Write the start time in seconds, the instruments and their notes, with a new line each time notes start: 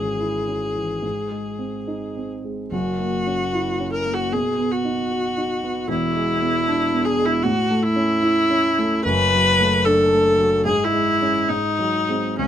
Already playing: grand piano G#1 G#2 E3 C#4, viola G#4
0.20 grand piano E4
0.48 grand piano C#4
0.75 grand piano E3
1.02 grand piano G#2
1.31 grand piano G#3
1.59 grand piano C4
1.87 grand piano D#4
2.16 grand piano C4
2.44 grand piano G#3
2.71 grand piano F#1 F#2, viola F#4
2.99 grand piano A#3
3.27 grand piano C#4
3.53 grand piano E4
3.80 grand piano C#4
3.92 viola A#4
4.05 grand piano A#3
4.13 viola F#4
4.32 grand piano B2, viola G#4
4.58 grand piano B3
4.71 viola F#4
4.85 grand piano D#4
5.11 grand piano F#4
5.37 grand piano D#4
5.64 grand piano B3
5.88 grand piano E1 E2, viola E4
6.15 grand piano G#3
6.41 grand piano B3
6.68 grand piano D4
6.93 grand piano B3
7.05 viola G#4
7.20 grand piano G#3
7.25 viola E4
7.42 grand piano A2, viola F#4
7.71 grand piano A3
7.82 viola E4
7.96 grand piano C#4
8.22 grand piano E4
8.50 grand piano C#4
8.78 grand piano A3
9.04 grand piano F#1 F#2, viola B4
9.34 grand piano F#3
9.60 grand piano A3
9.85 grand piano D4, viola A4
10.12 grand piano A3
10.38 grand piano F#3
10.65 grand piano G#2, viola G#4
10.84 viola E4
10.93 grand piano G#3
11.21 grand piano G#3 C#4
11.49 grand piano G#2, viola D#4
11.79 grand piano F#3
12.09 grand piano G#3 C4
12.38 grand piano C#2, viola C#4